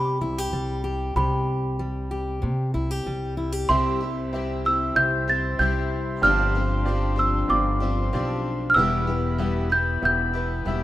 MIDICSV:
0, 0, Header, 1, 7, 480
1, 0, Start_track
1, 0, Key_signature, 0, "major"
1, 0, Tempo, 632911
1, 881, Time_signature, 4, 2, 24, 8
1, 8217, End_track
2, 0, Start_track
2, 0, Title_t, "Celesta"
2, 0, Program_c, 0, 8
2, 0, Note_on_c, 0, 83, 89
2, 872, Note_off_c, 0, 83, 0
2, 881, Note_on_c, 0, 83, 72
2, 2292, Note_off_c, 0, 83, 0
2, 2797, Note_on_c, 0, 84, 99
2, 3249, Note_off_c, 0, 84, 0
2, 3535, Note_on_c, 0, 88, 80
2, 3752, Note_off_c, 0, 88, 0
2, 3763, Note_on_c, 0, 91, 106
2, 4010, Note_off_c, 0, 91, 0
2, 4016, Note_on_c, 0, 93, 86
2, 4241, Note_on_c, 0, 91, 87
2, 4256, Note_off_c, 0, 93, 0
2, 4725, Note_on_c, 0, 89, 93
2, 4736, Note_off_c, 0, 91, 0
2, 5413, Note_off_c, 0, 89, 0
2, 5454, Note_on_c, 0, 88, 79
2, 5687, Note_on_c, 0, 86, 75
2, 5695, Note_off_c, 0, 88, 0
2, 6373, Note_off_c, 0, 86, 0
2, 6597, Note_on_c, 0, 89, 87
2, 6631, Note_on_c, 0, 88, 101
2, 6645, Note_off_c, 0, 89, 0
2, 7086, Note_off_c, 0, 88, 0
2, 7373, Note_on_c, 0, 91, 89
2, 7614, Note_off_c, 0, 91, 0
2, 7624, Note_on_c, 0, 91, 94
2, 8217, Note_off_c, 0, 91, 0
2, 8217, End_track
3, 0, Start_track
3, 0, Title_t, "Brass ensemble"
3, 0, Program_c, 1, 61
3, 2808, Note_on_c, 1, 76, 66
3, 2809, Note_on_c, 1, 67, 71
3, 2809, Note_on_c, 1, 84, 80
3, 2813, Note_on_c, 1, 72, 68
3, 4705, Note_off_c, 1, 76, 0
3, 4708, Note_off_c, 1, 72, 0
3, 4735, Note_on_c, 1, 74, 64
3, 4740, Note_on_c, 1, 77, 68
3, 6614, Note_off_c, 1, 84, 0
3, 6628, Note_off_c, 1, 74, 0
3, 6631, Note_off_c, 1, 77, 0
3, 6650, Note_on_c, 1, 71, 71
3, 6650, Note_on_c, 1, 83, 80
3, 6654, Note_on_c, 1, 76, 71
3, 8217, Note_off_c, 1, 67, 0
3, 8217, Note_off_c, 1, 71, 0
3, 8217, Note_off_c, 1, 76, 0
3, 8217, Note_off_c, 1, 83, 0
3, 8217, End_track
4, 0, Start_track
4, 0, Title_t, "Grand piano"
4, 0, Program_c, 2, 0
4, 2795, Note_on_c, 2, 60, 75
4, 2799, Note_on_c, 2, 64, 67
4, 2800, Note_on_c, 2, 36, 60
4, 2802, Note_on_c, 2, 48, 60
4, 2803, Note_on_c, 2, 67, 68
4, 2809, Note_on_c, 2, 76, 81
4, 2968, Control_c, 2, 64, 127
4, 3168, Note_off_c, 2, 60, 0
4, 3170, Note_off_c, 2, 64, 0
4, 3172, Note_off_c, 2, 67, 0
4, 3175, Note_off_c, 2, 76, 0
4, 3279, Note_on_c, 2, 60, 65
4, 3283, Note_on_c, 2, 64, 59
4, 3289, Note_on_c, 2, 67, 58
4, 3290, Note_on_c, 2, 76, 72
4, 3650, Note_off_c, 2, 60, 0
4, 3652, Note_off_c, 2, 64, 0
4, 3655, Note_off_c, 2, 67, 0
4, 3656, Note_off_c, 2, 76, 0
4, 3755, Note_on_c, 2, 60, 70
4, 3757, Note_on_c, 2, 64, 62
4, 3761, Note_on_c, 2, 67, 67
4, 3767, Note_on_c, 2, 76, 77
4, 4128, Note_off_c, 2, 60, 0
4, 4129, Note_off_c, 2, 64, 0
4, 4131, Note_off_c, 2, 67, 0
4, 4134, Note_off_c, 2, 76, 0
4, 4237, Note_on_c, 2, 60, 76
4, 4237, Note_on_c, 2, 64, 68
4, 4243, Note_on_c, 2, 67, 66
4, 4246, Note_on_c, 2, 76, 70
4, 4609, Note_off_c, 2, 60, 0
4, 4609, Note_off_c, 2, 64, 0
4, 4612, Note_off_c, 2, 67, 0
4, 4613, Note_off_c, 2, 76, 0
4, 4690, Note_off_c, 2, 36, 0
4, 4691, Note_off_c, 2, 48, 0
4, 4714, Note_on_c, 2, 60, 66
4, 4716, Note_on_c, 2, 43, 68
4, 4716, Note_on_c, 2, 67, 67
4, 4717, Note_on_c, 2, 65, 67
4, 4718, Note_on_c, 2, 31, 62
4, 4723, Note_on_c, 2, 74, 79
4, 4729, Control_c, 2, 64, 0
4, 4883, Control_c, 2, 64, 127
4, 5087, Note_off_c, 2, 60, 0
4, 5088, Note_off_c, 2, 67, 0
4, 5089, Note_off_c, 2, 65, 0
4, 5092, Note_off_c, 2, 74, 0
4, 5190, Note_on_c, 2, 60, 65
4, 5190, Note_on_c, 2, 65, 63
4, 5195, Note_on_c, 2, 67, 58
4, 5198, Note_on_c, 2, 74, 72
4, 5565, Note_off_c, 2, 60, 0
4, 5565, Note_off_c, 2, 65, 0
4, 5568, Note_off_c, 2, 67, 0
4, 5569, Note_off_c, 2, 74, 0
4, 5672, Note_on_c, 2, 60, 73
4, 5676, Note_on_c, 2, 65, 65
4, 5678, Note_on_c, 2, 67, 62
4, 5685, Note_on_c, 2, 74, 88
4, 6046, Note_off_c, 2, 60, 0
4, 6048, Note_off_c, 2, 65, 0
4, 6049, Note_off_c, 2, 67, 0
4, 6053, Note_off_c, 2, 74, 0
4, 6165, Note_on_c, 2, 60, 69
4, 6166, Note_on_c, 2, 65, 64
4, 6172, Note_on_c, 2, 67, 69
4, 6175, Note_on_c, 2, 74, 74
4, 6533, Note_off_c, 2, 60, 0
4, 6533, Note_off_c, 2, 65, 0
4, 6536, Note_off_c, 2, 67, 0
4, 6537, Note_off_c, 2, 74, 0
4, 6608, Note_off_c, 2, 43, 0
4, 6609, Note_off_c, 2, 31, 0
4, 6641, Note_on_c, 2, 59, 74
4, 6644, Note_on_c, 2, 64, 70
4, 6646, Note_on_c, 2, 40, 68
4, 6646, Note_on_c, 2, 52, 62
4, 6647, Note_on_c, 2, 67, 66
4, 6650, Note_on_c, 2, 76, 84
4, 6651, Control_c, 2, 64, 0
4, 6797, Control_c, 2, 64, 127
4, 7010, Note_off_c, 2, 59, 0
4, 7012, Note_off_c, 2, 64, 0
4, 7014, Note_off_c, 2, 67, 0
4, 7015, Note_off_c, 2, 76, 0
4, 7121, Note_on_c, 2, 59, 66
4, 7123, Note_on_c, 2, 64, 60
4, 7125, Note_on_c, 2, 67, 65
4, 7127, Note_on_c, 2, 76, 72
4, 7490, Note_off_c, 2, 59, 0
4, 7492, Note_off_c, 2, 64, 0
4, 7493, Note_off_c, 2, 67, 0
4, 7494, Note_off_c, 2, 76, 0
4, 7599, Note_on_c, 2, 59, 69
4, 7602, Note_on_c, 2, 64, 62
4, 7605, Note_on_c, 2, 67, 65
4, 7608, Note_on_c, 2, 76, 80
4, 7969, Note_off_c, 2, 59, 0
4, 7971, Note_off_c, 2, 64, 0
4, 7973, Note_off_c, 2, 67, 0
4, 7974, Note_off_c, 2, 76, 0
4, 8081, Note_on_c, 2, 59, 66
4, 8084, Note_on_c, 2, 64, 69
4, 8084, Note_on_c, 2, 67, 65
4, 8092, Note_on_c, 2, 76, 73
4, 8217, Note_off_c, 2, 40, 0
4, 8217, Note_off_c, 2, 52, 0
4, 8217, Note_off_c, 2, 59, 0
4, 8217, Note_off_c, 2, 64, 0
4, 8217, Note_off_c, 2, 67, 0
4, 8217, Note_off_c, 2, 76, 0
4, 8217, End_track
5, 0, Start_track
5, 0, Title_t, "Steel-string acoustic guitar"
5, 0, Program_c, 3, 25
5, 0, Note_on_c, 3, 48, 52
5, 0, Note_on_c, 3, 55, 56
5, 0, Note_on_c, 3, 67, 55
5, 159, Note_off_c, 3, 67, 0
5, 162, Note_on_c, 3, 64, 55
5, 290, Note_off_c, 3, 64, 0
5, 290, Note_on_c, 3, 67, 47
5, 398, Note_off_c, 3, 55, 0
5, 401, Note_on_c, 3, 55, 57
5, 627, Note_off_c, 3, 67, 0
5, 636, Note_on_c, 3, 67, 60
5, 855, Note_off_c, 3, 48, 0
5, 879, Note_on_c, 3, 48, 63
5, 883, Note_off_c, 3, 67, 0
5, 886, Note_on_c, 3, 67, 55
5, 1351, Note_off_c, 3, 55, 0
5, 1360, Note_on_c, 3, 55, 61
5, 1591, Note_off_c, 3, 67, 0
5, 1600, Note_on_c, 3, 67, 56
5, 1825, Note_off_c, 3, 48, 0
5, 1834, Note_on_c, 3, 48, 55
5, 2075, Note_off_c, 3, 67, 0
5, 2078, Note_on_c, 3, 64, 57
5, 2205, Note_off_c, 3, 64, 0
5, 2205, Note_on_c, 3, 67, 44
5, 2315, Note_off_c, 3, 55, 0
5, 2324, Note_on_c, 3, 55, 55
5, 2554, Note_off_c, 3, 67, 0
5, 2557, Note_on_c, 3, 64, 57
5, 2673, Note_off_c, 3, 64, 0
5, 2673, Note_on_c, 3, 67, 44
5, 2769, Note_off_c, 3, 48, 0
5, 2797, Note_off_c, 3, 67, 0
5, 4723, Note_off_c, 3, 55, 0
5, 8217, End_track
6, 0, Start_track
6, 0, Title_t, "Twelve-string acoustic guitar"
6, 0, Program_c, 4, 25
6, 2797, Note_on_c, 4, 48, 65
6, 2799, Note_on_c, 4, 55, 63
6, 2807, Note_on_c, 4, 60, 74
6, 2810, Note_on_c, 4, 64, 72
6, 2813, Note_on_c, 4, 67, 74
6, 3027, Note_off_c, 4, 67, 0
6, 3036, Note_on_c, 4, 67, 49
6, 3039, Note_off_c, 4, 48, 0
6, 3041, Note_off_c, 4, 55, 0
6, 3043, Note_off_c, 4, 64, 0
6, 3044, Note_off_c, 4, 60, 0
6, 3052, Note_on_c, 4, 64, 44
6, 3062, Note_on_c, 4, 60, 38
6, 3279, Note_off_c, 4, 67, 0
6, 3282, Note_on_c, 4, 55, 54
6, 3284, Note_off_c, 4, 60, 0
6, 3287, Note_off_c, 4, 64, 0
6, 3294, Note_on_c, 4, 60, 54
6, 3299, Note_on_c, 4, 64, 58
6, 3306, Note_on_c, 4, 67, 64
6, 3519, Note_off_c, 4, 67, 0
6, 3522, Note_off_c, 4, 55, 0
6, 3528, Note_off_c, 4, 60, 0
6, 3528, Note_on_c, 4, 67, 49
6, 3531, Note_off_c, 4, 64, 0
6, 3542, Note_on_c, 4, 64, 42
6, 3551, Note_on_c, 4, 60, 44
6, 3999, Note_off_c, 4, 67, 0
6, 4002, Note_on_c, 4, 67, 53
6, 4003, Note_off_c, 4, 64, 0
6, 4012, Note_on_c, 4, 64, 57
6, 4016, Note_off_c, 4, 60, 0
6, 4026, Note_on_c, 4, 60, 45
6, 4242, Note_off_c, 4, 67, 0
6, 4243, Note_off_c, 4, 60, 0
6, 4246, Note_on_c, 4, 55, 57
6, 4247, Note_off_c, 4, 64, 0
6, 4252, Note_on_c, 4, 60, 52
6, 4259, Note_on_c, 4, 64, 61
6, 4267, Note_on_c, 4, 67, 68
6, 4727, Note_off_c, 4, 60, 0
6, 4728, Note_on_c, 4, 43, 64
6, 4729, Note_off_c, 4, 55, 0
6, 4730, Note_off_c, 4, 64, 0
6, 4732, Note_on_c, 4, 53, 69
6, 4733, Note_on_c, 4, 50, 67
6, 4736, Note_on_c, 4, 62, 87
6, 4738, Note_on_c, 4, 60, 76
6, 4740, Note_off_c, 4, 67, 0
6, 4743, Note_on_c, 4, 67, 71
6, 4958, Note_off_c, 4, 67, 0
6, 4964, Note_off_c, 4, 43, 0
6, 4965, Note_off_c, 4, 62, 0
6, 4967, Note_off_c, 4, 50, 0
6, 4967, Note_off_c, 4, 53, 0
6, 4967, Note_on_c, 4, 67, 53
6, 4969, Note_off_c, 4, 60, 0
6, 4974, Note_on_c, 4, 62, 49
6, 4982, Note_on_c, 4, 60, 46
6, 4989, Note_on_c, 4, 53, 41
6, 5193, Note_off_c, 4, 53, 0
6, 5201, Note_off_c, 4, 60, 0
6, 5202, Note_on_c, 4, 53, 55
6, 5204, Note_off_c, 4, 67, 0
6, 5207, Note_off_c, 4, 62, 0
6, 5210, Note_on_c, 4, 60, 58
6, 5218, Note_on_c, 4, 62, 61
6, 5224, Note_on_c, 4, 67, 67
6, 5420, Note_off_c, 4, 67, 0
6, 5429, Note_on_c, 4, 67, 49
6, 5431, Note_off_c, 4, 62, 0
6, 5438, Note_off_c, 4, 60, 0
6, 5440, Note_on_c, 4, 62, 44
6, 5441, Note_off_c, 4, 53, 0
6, 5447, Note_on_c, 4, 60, 47
6, 5454, Note_on_c, 4, 53, 39
6, 5908, Note_off_c, 4, 67, 0
6, 5917, Note_off_c, 4, 62, 0
6, 5917, Note_on_c, 4, 67, 55
6, 5924, Note_off_c, 4, 60, 0
6, 5926, Note_on_c, 4, 62, 52
6, 5928, Note_off_c, 4, 53, 0
6, 5935, Note_on_c, 4, 60, 52
6, 5942, Note_on_c, 4, 53, 50
6, 6156, Note_off_c, 4, 53, 0
6, 6159, Note_off_c, 4, 67, 0
6, 6163, Note_off_c, 4, 60, 0
6, 6164, Note_off_c, 4, 62, 0
6, 6165, Note_on_c, 4, 53, 60
6, 6172, Note_on_c, 4, 60, 63
6, 6181, Note_on_c, 4, 62, 60
6, 6185, Note_on_c, 4, 67, 61
6, 6643, Note_off_c, 4, 53, 0
6, 6646, Note_off_c, 4, 60, 0
6, 6650, Note_on_c, 4, 52, 71
6, 6651, Note_off_c, 4, 62, 0
6, 6653, Note_off_c, 4, 67, 0
6, 6657, Note_on_c, 4, 55, 68
6, 6658, Note_on_c, 4, 59, 74
6, 6665, Note_on_c, 4, 64, 74
6, 6667, Note_on_c, 4, 67, 75
6, 6871, Note_off_c, 4, 67, 0
6, 6880, Note_on_c, 4, 67, 55
6, 6881, Note_off_c, 4, 64, 0
6, 6885, Note_off_c, 4, 52, 0
6, 6889, Note_off_c, 4, 55, 0
6, 6889, Note_off_c, 4, 59, 0
6, 6890, Note_on_c, 4, 64, 45
6, 6901, Note_on_c, 4, 59, 38
6, 7114, Note_off_c, 4, 59, 0
6, 7117, Note_on_c, 4, 55, 61
6, 7120, Note_off_c, 4, 67, 0
6, 7122, Note_off_c, 4, 64, 0
6, 7123, Note_on_c, 4, 59, 59
6, 7131, Note_on_c, 4, 64, 58
6, 7139, Note_on_c, 4, 67, 62
6, 7345, Note_off_c, 4, 67, 0
6, 7354, Note_on_c, 4, 67, 46
6, 7358, Note_off_c, 4, 64, 0
6, 7359, Note_off_c, 4, 55, 0
6, 7362, Note_off_c, 4, 59, 0
6, 7367, Note_on_c, 4, 64, 44
6, 7382, Note_on_c, 4, 59, 41
6, 7829, Note_off_c, 4, 67, 0
6, 7838, Note_on_c, 4, 67, 55
6, 7846, Note_off_c, 4, 64, 0
6, 7849, Note_on_c, 4, 64, 50
6, 7852, Note_off_c, 4, 59, 0
6, 7860, Note_on_c, 4, 59, 47
6, 8079, Note_off_c, 4, 67, 0
6, 8080, Note_on_c, 4, 55, 51
6, 8082, Note_off_c, 4, 59, 0
6, 8085, Note_off_c, 4, 64, 0
6, 8091, Note_on_c, 4, 59, 49
6, 8098, Note_on_c, 4, 64, 52
6, 8104, Note_on_c, 4, 67, 61
6, 8217, Note_off_c, 4, 55, 0
6, 8217, Note_off_c, 4, 59, 0
6, 8217, Note_off_c, 4, 64, 0
6, 8217, Note_off_c, 4, 67, 0
6, 8217, End_track
7, 0, Start_track
7, 0, Title_t, "Upright bass"
7, 0, Program_c, 5, 32
7, 0, Note_on_c, 5, 48, 75
7, 149, Note_off_c, 5, 48, 0
7, 159, Note_on_c, 5, 36, 81
7, 387, Note_off_c, 5, 36, 0
7, 398, Note_on_c, 5, 36, 77
7, 855, Note_off_c, 5, 36, 0
7, 879, Note_on_c, 5, 36, 94
7, 1845, Note_on_c, 5, 48, 80
7, 1856, Note_off_c, 5, 36, 0
7, 2071, Note_off_c, 5, 48, 0
7, 2082, Note_on_c, 5, 36, 75
7, 2310, Note_off_c, 5, 36, 0
7, 2324, Note_on_c, 5, 36, 81
7, 2779, Note_off_c, 5, 36, 0
7, 2803, Note_on_c, 5, 36, 87
7, 3732, Note_off_c, 5, 36, 0
7, 3764, Note_on_c, 5, 36, 83
7, 4218, Note_off_c, 5, 36, 0
7, 4243, Note_on_c, 5, 36, 73
7, 4698, Note_off_c, 5, 36, 0
7, 4721, Note_on_c, 5, 31, 89
7, 5651, Note_off_c, 5, 31, 0
7, 5684, Note_on_c, 5, 31, 87
7, 6138, Note_off_c, 5, 31, 0
7, 6165, Note_on_c, 5, 35, 90
7, 6618, Note_off_c, 5, 35, 0
7, 6642, Note_on_c, 5, 28, 98
7, 7571, Note_off_c, 5, 28, 0
7, 7604, Note_on_c, 5, 28, 81
7, 8058, Note_off_c, 5, 28, 0
7, 8084, Note_on_c, 5, 28, 87
7, 8217, Note_off_c, 5, 28, 0
7, 8217, End_track
0, 0, End_of_file